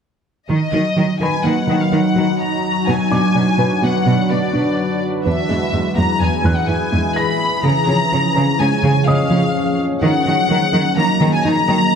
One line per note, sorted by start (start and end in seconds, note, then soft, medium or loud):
0.49 0.57 D#3 soft
0.49 0.64 D#3 medium
0.49 5.22 F#3 medium
0.49 2.84 D#4 medium
0.49 5.22 F#4 medium
0.49 1.17 D#5 soft
0.73 0.81 D#3 soft
0.73 0.88 F#3 soft
0.97 1.05 D#3 soft
0.97 1.11 F#3 soft
1.20 1.29 D#3 soft
1.20 1.35 D#4 soft
1.20 2.61 B4 soft
1.20 1.45 G#5 medium
1.20 2.61 B5 soft
1.44 1.53 D#3 soft
1.44 1.59 A#3 soft
1.44 1.81 F#5 soft
1.67 1.82 D#3 medium
1.67 1.77 D#3 soft
1.81 1.93 F5 soft
1.92 2.00 D#3 soft
1.92 2.07 D#4 soft
1.92 2.41 F#5 soft
2.16 2.24 D#3 soft
2.16 2.31 F#3 soft
2.41 2.87 A#5 medium
2.87 2.96 B2 soft
2.87 3.02 B3 medium
2.87 5.25 D4 medium
2.87 7.64 B4 medium
2.87 3.83 G#5 medium
3.11 3.19 B2 soft
3.11 3.26 D4 soft
3.11 4.50 D6 soft
3.35 3.43 B2 soft
3.35 3.50 D4 soft
3.59 3.67 B2 soft
3.59 3.73 B4 soft
3.82 3.91 B2 soft
3.82 3.97 F#4 soft
3.82 4.31 F#5 medium
4.06 4.14 B2 soft
4.06 4.21 B3 medium
4.30 4.38 B2 soft
4.30 4.45 B4 soft
4.30 5.02 D5 soft
4.54 4.62 B2 soft
4.54 4.68 D4 soft
5.25 5.34 E2 soft
5.25 5.40 E3 medium
5.25 7.64 E3 medium
5.25 7.64 E4 medium
5.25 10.03 G#4 medium
5.25 5.94 E5 medium
5.49 5.58 E2 soft
5.49 5.64 G#3 medium
5.73 5.81 E2 soft
5.73 5.88 G#3 soft
5.97 6.05 E2 soft
5.97 6.11 E4 soft
5.97 6.21 A#5 medium
6.21 6.29 E2 soft
6.21 6.35 B3 soft
6.21 6.57 G#5 medium
6.44 6.52 E2 medium
6.44 6.59 E3 medium
6.44 7.84 F#6 soft
6.57 6.69 F#5 soft
6.68 6.76 E2 soft
6.68 6.83 E4 soft
6.68 7.17 G#5 medium
6.92 7.00 E2 soft
6.92 7.07 G#3 soft
7.16 7.64 B5 medium
7.16 8.55 A#6 soft
7.64 7.72 C#3 soft
7.64 7.79 C#3 medium
7.64 10.03 F3 medium
7.64 10.03 C#4 medium
7.64 10.03 C#5 medium
7.64 8.58 A#5 medium
7.88 7.96 C#3 soft
7.88 8.02 F3 medium
8.12 8.20 C#3 soft
8.12 8.26 F3 soft
8.35 8.43 C#3 soft
8.35 8.50 C#4 soft
8.59 8.67 C#3 soft
8.59 8.74 G#3 medium
8.59 9.07 G#5 medium
8.83 8.91 C#3 medium
8.83 8.98 C#3 medium
9.07 9.15 C#3 soft
9.07 9.21 C#4 soft
9.07 10.46 D#5 soft
9.07 9.79 F5 medium
9.07 10.46 D#6 soft
9.31 9.39 C#3 soft
9.31 9.45 F3 medium
10.02 10.16 D#3 medium
10.02 10.11 D#3 medium
10.02 11.95 F#3 medium
10.02 11.95 A#3 medium
10.02 11.95 F#4 medium
10.02 11.95 D#5 medium
10.02 10.93 F#5 medium
10.26 10.34 D#3 soft
10.26 10.40 F#3 medium
10.50 10.58 D#3 soft
10.50 10.64 F#3 medium
10.73 10.81 D#3 soft
10.73 10.88 D#4 soft
10.97 11.05 D#3 soft
10.97 11.11 A#3 medium
10.97 11.34 A#5 medium
11.21 11.29 D#3 medium
11.21 11.36 D#3 medium
11.34 11.45 G#5 medium
11.45 11.53 D#3 soft
11.45 11.59 D#4 medium
11.45 11.95 A#5 medium
11.68 11.76 D#3 soft
11.68 11.83 F#3 medium